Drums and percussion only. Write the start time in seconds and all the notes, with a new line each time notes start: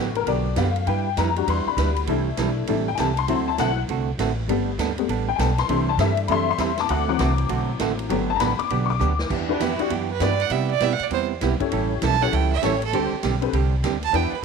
0.15 ride
0.27 ride
0.56 snare, hi-hat pedal, ride
0.76 ride
0.87 ride
1.17 snare, hi-hat pedal, ride
1.36 ride
1.48 ride
1.78 snare, hi-hat pedal, ride
1.96 ride
2.07 ride
2.37 snare, hi-hat pedal, ride
2.67 ride
2.97 snare, hi-hat pedal, ride
3.17 ride
3.28 ride
3.58 snare, hi-hat pedal, ride
3.89 ride
4.19 snare, hi-hat pedal, ride
4.49 ride
4.79 snare, hi-hat pedal, ride
4.98 ride
5.09 ride
5.39 snare, hi-hat pedal, ride
5.58 snare, ride
5.69 ride
5.99 snare, hi-hat pedal, ride
6.17 ride
6.28 ride
6.58 snare, hi-hat pedal, ride
6.78 snare, ride
6.89 ride
7.19 snare, hi-hat pedal, ride
7.38 ride
7.49 ride
7.79 snare, hi-hat pedal, ride
7.99 ride
8.10 ride
8.40 snare, hi-hat pedal, ride
8.59 ride
8.70 ride
9.00 hi-hat pedal
9.19 snare
9.30 kick, crash
9.60 snare, hi-hat pedal, ride
9.79 ride
9.90 ride
10.20 snare, hi-hat pedal, ride
10.40 ride
10.50 ride
10.80 snare, hi-hat pedal, ride
10.99 ride
11.11 ride
11.41 snare, hi-hat pedal, ride
11.60 kick, ride
11.72 ride
12.02 snare, hi-hat pedal, ride
12.12 snare
12.23 snare
12.33 ride
12.63 snare, hi-hat pedal, ride
12.82 ride
12.93 ride
13.23 snare, hi-hat pedal, ride
13.42 ride
13.53 ride
13.84 snare, hi-hat pedal, ride
14.03 ride
14.14 ride